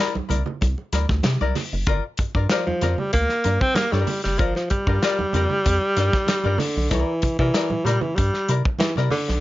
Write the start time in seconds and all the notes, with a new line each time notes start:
Already playing: E4 A#4
0.00 D5
0.15 C2, muted hollow-body jazz guitar stroke, muted conga, high conga
0.29 C2 E4 A#4 D5, closed hi-hat, low conga
0.46 muted hollow-body jazz guitar stroke, low conga
0.61 C2, muted hollow-body jazz guitar stroke, kick, closed hi-hat, muted conga
0.78 muted conga
0.93 D2 E4 A#4 D5, snare, closed hi-hat, high conga
1.09 D2, muted hollow-body jazz guitar stroke, kick, snare, high conga
1.23 C3, muted hollow-body jazz guitar stroke, snare, closed hi-hat, muted conga, high conga
1.41 C2 E4 A#4 D5, high conga
1.55 muted hollow-body jazz guitar stroke, snare, open hi-hat, low conga
1.73 F#1, muted hollow-body jazz guitar stroke
1.87 G1 F4 A#4 D5, kick, closed hi-hat, muted conga
2.17 G2, muted hollow-body jazz guitar stroke, kick, closed hi-hat
2.35 G2 F4 A#4 D5, kick
2.49 F3 F4 A#4 D5, snare, closed hi-hat
2.66 F2 F3, muted hollow-body jazz guitar stroke, muted conga, high conga
2.81 F2 F4 A#4 D5, snare, closed hi-hat, low conga
2.98 G3, muted hollow-body jazz guitar stroke, low conga
3.13 D2 A#3, muted hollow-body jazz guitar stroke, kick, closed hi-hat, muted conga
3.29 snare, muted conga
3.44 G2 F4 A#4 D5, closed hi-hat, high conga
3.61 C4, muted hollow-body jazz guitar stroke, kick, high conga
3.75 A#3, muted hollow-body jazz guitar stroke, snare, closed hi-hat, muted conga, high conga
3.92 G2 G3 F4 A#4 D5, snare, muted conga, high conga
4.07 muted hollow-body jazz guitar stroke, open hi-hat, low conga
4.24 F#1 G3, muted hollow-body jazz guitar stroke, snare
4.38 G1 F3 F4 A#4 D5, kick, closed hi-hat, muted conga
4.55 F3, snare, muted conga
4.70 G2 G3, muted hollow-body jazz guitar stroke, kick, closed hi-hat
4.87 G2 F4 A#4 D5, kick
5.02 F4 A#4 D5, snare, closed hi-hat
5.19 F2, muted hollow-body jazz guitar stroke, muted conga, high conga
5.33 F2 F4 A#4 D5, closed hi-hat, low conga
5.49 muted hollow-body jazz guitar stroke, low conga
5.64 F2, muted hollow-body jazz guitar stroke, kick, closed hi-hat, muted conga
5.81 muted conga
5.97 G2 F4 A#4 D5, snare, closed hi-hat, high conga
6.12 muted hollow-body jazz guitar stroke, kick, snare, high conga
6.26 muted hollow-body jazz guitar stroke, snare, closed hi-hat, high conga
6.44 G2 F4 A#4 D5, muted conga, high conga
6.58 D3, muted hollow-body jazz guitar stroke, snare, open hi-hat, low conga
6.77 B1, muted hollow-body jazz guitar stroke
6.90 C2 E3 E4 A#4 D5, kick, closed hi-hat, muted conga
7.22 C3, muted hollow-body jazz guitar stroke, kick, closed hi-hat
7.39 C3 E3 E4 A#4 D5, kick
7.54 E4 A#4 D5, snare, closed hi-hat
7.70 A#2, muted hollow-body jazz guitar stroke, muted conga, high conga
7.85 A#2 G3 E4 A#4 D5, snare, closed hi-hat, low conga
8.01 E3, muted hollow-body jazz guitar stroke, low conga
8.15 G2 G3, muted hollow-body jazz guitar stroke, kick, closed hi-hat, muted conga
8.34 snare
8.49 C3 E4 A#4 D5, closed hi-hat, high conga
8.65 muted hollow-body jazz guitar stroke, kick, high conga
8.79 E3, muted hollow-body jazz guitar stroke, snare, closed hi-hat, muted conga, high conga
8.96 C3 E4 A#4 D5, snare, muted conga, high conga
9.10 D3, open hi-hat, low conga
9.28 B1, muted hollow-body jazz guitar stroke, snare